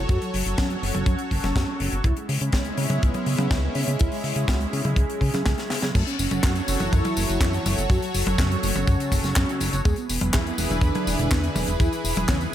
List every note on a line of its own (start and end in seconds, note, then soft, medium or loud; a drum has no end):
0.00 2.01 F#3 medium
0.00 2.01 F#4 medium
0.00 2.01 A4 medium
0.00 2.01 C#5 medium
0.09 0.18 F#2 loud
0.09 0.18 F#4 loud
0.09 kick loud
0.09 closed hi-hat medium
0.22 0.30 F#3 medium
0.22 closed hi-hat medium
0.34 0.43 F#1 medium
0.34 0.42 F#3 medium
0.34 open hi-hat loud
0.46 0.55 F#1 medium
0.46 0.55 F#3 medium
0.46 closed hi-hat medium
0.58 0.76 F#2 medium
0.58 0.67 C#4 loud
0.58 kick loud
0.58 snare loud
0.58 closed hi-hat medium
0.70 0.79 F#3 medium
0.70 closed hi-hat medium
0.82 0.92 F#1 medium
0.82 0.91 F#3 medium
0.82 open hi-hat loud
0.94 1.04 F#1 medium
0.94 1.95 C#4 medium
0.94 closed hi-hat medium
0.94 high tom medium
1.06 1.16 F#2 medium
1.06 kick loud
1.06 closed hi-hat medium
1.19 closed hi-hat medium
1.31 1.40 F#1 medium
1.31 kick medium
1.31 open hi-hat loud
1.44 1.53 F#1 medium
1.44 snare soft
1.44 closed hi-hat medium
1.44 high tom medium
1.56 1.65 F#2 loud
1.56 kick loud
1.56 snare loud
1.56 closed hi-hat medium
1.80 1.89 F#1 medium
1.80 open hi-hat loud
1.92 2.01 F#1 medium
1.92 closed hi-hat medium
2.04 2.13 C#2 loud
2.04 5.91 G#3 medium
2.04 5.91 C#4 medium
2.04 2.13 E4 loud
2.04 5.91 E4 medium
2.04 kick loud
2.04 closed hi-hat medium
2.16 2.25 G#3 medium
2.16 closed hi-hat medium
2.29 2.38 C#3 medium
2.29 2.38 G#3 medium
2.29 open hi-hat loud
2.41 2.50 C#3 medium
2.41 2.50 G#3 medium
2.41 closed hi-hat medium
2.52 2.71 C#2 medium
2.52 2.62 C#4 loud
2.52 kick loud
2.52 snare loud
2.52 closed hi-hat medium
2.65 2.74 G#3 medium
2.65 closed hi-hat medium
2.77 2.87 C#3 loud
2.77 2.86 G#3 medium
2.77 open hi-hat loud
2.90 2.99 C#3 medium
2.90 3.90 B3 loud
2.90 closed hi-hat medium
2.90 high tom medium
3.03 3.12 C#2 medium
3.03 kick loud
3.03 closed hi-hat medium
3.14 closed hi-hat medium
3.14 high tom medium
3.26 3.35 C#3 medium
3.26 open hi-hat loud
3.39 3.48 C#3 loud
3.39 closed hi-hat medium
3.39 high tom medium
3.51 3.69 C#2 loud
3.51 kick loud
3.51 snare loud
3.51 closed hi-hat medium
3.75 3.84 C#3 medium
3.75 open hi-hat loud
3.87 3.96 C#3 medium
3.87 closed hi-hat medium
3.99 4.09 C#2 loud
3.99 4.08 E4 loud
3.99 kick loud
3.99 closed hi-hat loud
4.12 4.20 G#3 medium
4.12 open hi-hat medium
4.24 4.33 C#3 medium
4.24 4.33 G#3 medium
4.24 open hi-hat loud
4.36 4.45 C#3 medium
4.36 4.45 G#3 medium
4.36 closed hi-hat medium
4.47 4.66 C#2 medium
4.47 4.57 F#4 medium
4.47 kick loud
4.47 snare loud
4.47 closed hi-hat medium
4.60 4.69 G#3 medium
4.60 closed hi-hat medium
4.72 4.82 C#3 medium
4.72 4.81 G#3 medium
4.72 open hi-hat loud
4.84 4.94 C#3 medium
4.84 5.85 G#4 loud
4.84 closed hi-hat medium
4.84 high tom medium
4.96 5.06 C#2 medium
4.96 kick loud
4.96 closed hi-hat medium
5.10 closed hi-hat medium
5.21 5.30 C#3 medium
5.21 kick medium
5.21 open hi-hat loud
5.34 5.43 C#3 medium
5.34 snare soft
5.34 closed hi-hat medium
5.34 high tom medium
5.46 5.55 C#2 loud
5.46 kick loud
5.46 snare loud
5.46 closed hi-hat medium
5.58 snare medium
5.58 closed hi-hat medium
5.70 5.79 C#3 loud
5.70 snare medium
5.70 open hi-hat loud
5.82 5.92 C#3 medium
5.82 snare medium
5.82 closed hi-hat medium
5.82 high tom soft
5.94 6.04 F#2 loud
5.94 9.81 F#3 medium
5.94 6.03 A3 medium
5.94 9.81 F#4 medium
5.94 6.03 A4 loud
5.94 9.81 A4 medium
5.94 9.81 C#5 medium
5.94 kick loud
5.94 closed hi-hat medium
5.94 crash loud
5.94 tambourine soft
6.07 6.16 C#4 medium
6.07 closed hi-hat medium
6.07 tambourine soft
6.19 6.28 F#1 medium
6.19 6.28 C#4 medium
6.19 open hi-hat loud
6.19 tambourine medium
6.31 6.40 F#1 medium
6.31 6.40 C#4 medium
6.31 closed hi-hat medium
6.31 high tom medium
6.31 tambourine soft
6.43 6.62 F#2 medium
6.43 6.52 F#3 medium
6.43 6.52 F#4 loud
6.43 kick loud
6.43 snare loud
6.43 clap loud
6.43 closed hi-hat medium
6.43 tambourine soft
6.55 6.64 C#4 medium
6.55 closed hi-hat medium
6.55 tambourine soft
6.68 6.77 F#1 medium
6.68 6.77 C#4 medium
6.68 open hi-hat loud
6.68 tambourine medium
6.80 6.89 F#1 medium
6.80 7.80 E3 medium
6.80 7.80 E4 loud
6.80 closed hi-hat medium
6.80 high tom medium
6.80 tambourine soft
6.93 7.02 F#2 loud
6.93 kick loud
6.93 closed hi-hat medium
6.93 tambourine soft
7.05 closed hi-hat medium
7.05 high tom medium
7.05 tambourine soft
7.17 7.26 F#1 medium
7.17 open hi-hat loud
7.17 tambourine medium
7.29 7.38 F#1 loud
7.29 closed hi-hat medium
7.29 tambourine soft
7.41 7.59 F#2 loud
7.41 kick loud
7.41 snare loud
7.41 clap loud
7.41 closed hi-hat medium
7.41 tambourine soft
7.53 closed hi-hat medium
7.53 tambourine soft
7.66 7.75 F#1 medium
7.66 open hi-hat loud
7.66 high tom medium
7.66 tambourine medium
7.78 7.87 F#1 medium
7.78 closed hi-hat medium
7.78 tambourine soft
7.90 7.99 F#2 loud
7.90 7.99 F#3 medium
7.90 7.99 F#4 loud
7.90 kick loud
7.90 closed hi-hat medium
7.90 tambourine soft
8.02 8.11 F#3 medium
8.02 closed hi-hat medium
8.02 tambourine soft
8.14 8.23 F#1 medium
8.14 8.23 F#3 medium
8.14 open hi-hat loud
8.14 tambourine medium
8.26 8.36 F#1 medium
8.26 8.35 F#3 medium
8.26 closed hi-hat medium
8.26 high tom medium
8.26 tambourine soft
8.38 8.56 F#2 medium
8.38 8.47 C#3 medium
8.38 8.47 C#4 loud
8.38 kick loud
8.38 snare loud
8.38 clap medium
8.38 closed hi-hat medium
8.38 tambourine soft
8.51 8.60 F#3 medium
8.51 closed hi-hat medium
8.51 tambourine soft
8.63 8.72 F#1 medium
8.63 8.72 F#3 medium
8.63 open hi-hat loud
8.63 tambourine medium
8.75 8.84 F#1 medium
8.75 9.75 C#3 medium
8.75 9.75 C#4 loud
8.75 closed hi-hat medium
8.75 high tom medium
8.75 tambourine soft
8.87 8.96 F#2 medium
8.87 kick loud
8.87 closed hi-hat medium
8.87 tambourine soft
9.00 closed hi-hat medium
9.00 tambourine soft
9.12 9.21 F#1 medium
9.12 kick medium
9.12 open hi-hat loud
9.12 tambourine medium
9.24 9.33 F#1 loud
9.24 snare soft
9.24 closed hi-hat medium
9.24 tambourine soft
9.36 9.45 F#2 loud
9.36 kick loud
9.36 snare loud
9.36 clap loud
9.36 closed hi-hat medium
9.36 tambourine soft
9.49 closed hi-hat medium
9.49 tambourine soft
9.60 9.70 F#1 loud
9.60 open hi-hat loud
9.60 tambourine medium
9.73 9.82 F#1 medium
9.73 closed hi-hat medium
9.73 tambourine soft
9.85 9.94 E2 medium
9.85 12.55 E3 medium
9.85 9.94 G#3 medium
9.85 12.55 E4 medium
9.85 12.55 G#4 medium
9.85 9.94 G#4 loud
9.85 12.55 B4 medium
9.85 kick loud
9.85 closed hi-hat medium
9.85 tambourine soft
9.96 10.06 B3 medium
9.96 closed hi-hat medium
9.96 tambourine soft
10.09 10.18 E1 medium
10.09 10.18 B3 medium
10.09 open hi-hat loud
10.09 tambourine medium
10.21 10.31 E1 medium
10.21 10.30 B3 medium
10.21 closed hi-hat medium
10.21 high tom medium
10.21 tambourine soft
10.33 10.52 E2 medium
10.33 10.42 E3 medium
10.33 10.42 E4 loud
10.33 kick loud
10.33 snare loud
10.33 clap loud
10.33 closed hi-hat medium
10.33 tambourine soft
10.46 10.55 B3 medium
10.46 closed hi-hat medium
10.46 tambourine soft
10.58 10.67 E1 medium
10.58 10.67 B3 medium
10.58 open hi-hat loud
10.58 tambourine medium
10.70 10.79 E1 medium
10.70 11.70 D3 medium
10.70 11.70 D4 loud
10.70 closed hi-hat medium
10.70 high tom medium
10.70 tambourine soft
10.81 10.91 E2 loud
10.81 kick loud
10.81 closed hi-hat medium
10.81 tambourine soft
10.95 closed hi-hat medium
10.95 high tom medium
10.95 tambourine soft
11.07 11.16 E1 loud
11.07 open hi-hat loud
11.07 tambourine medium
11.19 11.28 E1 loud
11.19 closed hi-hat medium
11.19 tambourine soft
11.31 11.49 E2 loud
11.31 kick loud
11.31 snare loud
11.31 clap loud
11.31 closed hi-hat medium
11.31 tambourine soft
11.43 closed hi-hat medium
11.43 tambourine soft
11.56 11.65 E1 medium
11.56 open hi-hat loud
11.56 high tom medium
11.56 tambourine medium
11.67 11.77 E1 medium
11.67 closed hi-hat medium
11.67 tambourine soft
11.80 11.89 E2 loud
11.80 11.89 E3 medium
11.80 11.89 E4 loud
11.80 kick loud
11.80 closed hi-hat medium
11.80 tambourine soft
11.92 12.01 E3 medium
11.92 closed hi-hat medium
11.92 tambourine soft
12.04 12.13 E1 medium
12.04 12.13 E3 medium
12.04 open hi-hat loud
12.04 tambourine medium
12.16 12.26 E1 medium
12.16 12.25 E3 medium
12.16 closed hi-hat medium
12.16 high tom medium
12.16 tambourine soft
12.28 12.47 E2 medium
12.28 12.37 C#3 medium
12.28 12.37 C#4 loud
12.28 kick loud
12.28 snare loud
12.28 clap medium
12.28 closed hi-hat medium
12.28 tambourine soft
12.41 12.50 E3 medium
12.41 closed hi-hat medium
12.41 tambourine soft